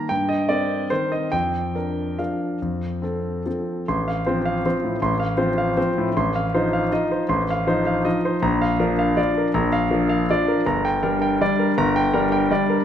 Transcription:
Already playing: A#5
0.09 G2 G5
0.29 D#5
0.49 C4 A#4 D5
0.90 D#3 C4 A#4 C5
1.12 D#5
1.32 F2 G5
1.75 D4 A#4
2.19 F3 D4 A#4 F5
2.62 F2
3.02 C4 A4
3.46 F3 C4 A4
3.88 A1 C6
4.08 F5
4.26 F3 C4 C5
4.45 F5
4.66 F3 C4 C5
4.84 A2
5.02 A1 C6
5.19 F5
5.37 F3 C4 C5
5.58 F5
5.77 F3 C4 C5
5.98 A2
6.17 A1 C6
6.35 F5
6.54 F3 D#4 C5
6.73 F5
6.92 F3 D#4 D#5
7.11 C5
7.29 A1 C6
7.50 F5
7.67 F3 D#4 C5
7.87 F5
8.05 F3 D#4 D#5
8.25 C5
8.42 A#1 A#5
8.62 F5
8.79 F3 D4 A#4
8.99 F5
9.17 F3 D4 D5
9.38 A#4
9.54 A#1 A#5
9.72 F5
9.91 F3 D4 A#4
10.09 F5
10.30 F3 D4 D5
10.48 A#4
10.66 G1 A#5
10.85 G5
11.03 G3 D4 A#4
11.22 G5
11.41 G3 D4 D5
11.59 A#4
11.78 G1 A#5
11.96 G5
12.14 G3 D4 A#4
12.32 G5
12.51 G3 D4 D5
12.70 A#4

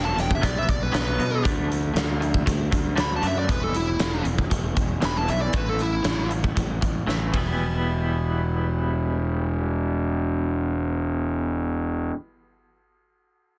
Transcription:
Already playing: E1 E2 B2
0.05 A5
0.16 E1 E2 B2, snare, closed hi-hat
0.21 G5
0.31 kick
0.35 E5
0.41 B1 B2 F#3 B3 D5, kick, closed hi-hat
0.58 E5
0.67 B1 B2 F#3 D5, kick, closed hi-hat
0.83 B4
0.92 B1 B2 F#3 B3, snare, closed hi-hat
0.96 B4
1.18 B2 F#3 B3, closed hi-hat
1.42 D2 D3 A3 D4, kick, closed hi-hat
1.69 D3 A3, closed hi-hat
1.94 D2 D3 A3, snare, closed hi-hat
2.21 D3 A3, closed hi-hat
2.34 kick
2.46 D2 D3 A3, kick, closed hi-hat
2.71 D2 D3 A3, kick, closed hi-hat
2.96 D2 D3 A3 D4, snare, closed hi-hat
3.00 B5
3.16 A5
3.21 F#2 D3 A3 D4, closed hi-hat
3.27 E5
3.39 D5
3.48 E1 E2 B2 E3 B4, kick, closed hi-hat
3.63 A4
3.72 E1 E2 B2 E4, closed hi-hat
4.00 E1 E2 B2, snare, closed hi-hat
4.24 E1 E2 B2, closed hi-hat
4.38 kick
4.50 E1 E2 B2, kick, closed hi-hat
4.75 E1 E2 B2, kick, closed hi-hat
5.01 E1 E2 B2 E3, snare, closed hi-hat
5.05 B5
5.17 A5
5.27 B1 E2 B2 E3 E5, closed hi-hat
5.41 D5
5.52 A1 A2 E3 A3 B4, kick, closed hi-hat
5.69 A4
5.78 A2 E3 E4, closed hi-hat
6.03 A1 A2 E3, snare, closed hi-hat
6.29 A2 E3, closed hi-hat
6.44 kick
6.56 A1 A2 E3, kick, closed hi-hat
6.81 A1 A2 E3, kick, closed hi-hat
7.07 A1 A2 E3 A3, snare
7.32 E1 E2 B2 E3 G3 B3 E4, kick, ride

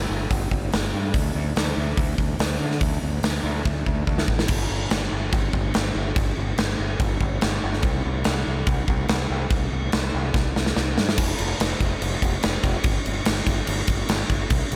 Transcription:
0.10 G1
0.30 G1, kick, open hi-hat
0.51 G1, kick
0.72 G1, snare, open hi-hat
0.94 G2
1.14 D2, kick, open hi-hat
1.35 D2
1.56 D2, snare, open hi-hat
1.77 D2
1.97 D2, kick, open hi-hat
2.18 D2, kick
2.39 D2, snare, open hi-hat
2.61 D3
2.71 snare
2.81 D2, kick, open hi-hat
3.02 D2
3.23 D2, snare, open hi-hat
3.44 D2
3.65 D2, kick
3.86 D2, kick
4.07 D2, kick
4.18 snare
4.28 A1, kick
4.39 snare
4.48 G1, kick, crash
4.70 G1
4.90 G1, snare, crash
5.12 G1
5.33 G1, kick, crash
5.53 G1, kick
5.74 G1, snare, crash
5.95 G1
6.16 G1, kick, crash
6.37 G1
6.58 G1, snare, crash
6.79 G1
7.00 G1, kick, crash
7.20 G1, kick
7.41 G1, snare, crash
7.63 G1
7.73 snare
7.82 C2, kick, crash
8.05 C2
8.24 C2, snare, crash
8.47 C2
8.66 C2, kick, crash
8.88 C2, kick
9.08 C2, snare, crash
9.30 C2
9.50 C2, kick, crash
9.72 C2
9.92 C2, snare, crash
10.14 C2
10.34 C2, kick, snare
10.56 C2, snare
10.66 snare
10.76 C2, snare
10.98 G2, snare
11.09 snare
11.18 F1, kick, crash
11.38 F1, crash
11.60 F1, snare, crash
11.80 F1, kick, crash
12.02 F1, crash
12.22 F1, kick, crash
12.43 F1, snare, crash
12.63 F1, kick, crash
12.84 G1, kick, crash
13.06 G1, crash
13.25 G1, snare, crash
13.47 G1, kick, crash
13.67 G1, crash
13.87 G1, kick, crash
14.09 G1, snare, crash
14.30 G1, kick, crash
14.50 C2, kick, crash
14.72 C2, crash

